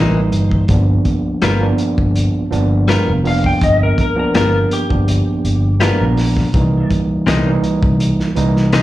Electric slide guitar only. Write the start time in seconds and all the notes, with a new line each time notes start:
Already playing: C5
3.27 F5
3.46 G5
3.64 D#5
3.83 A#4
4.01 A#4
4.19 A#4
4.36 A#4
4.73 G4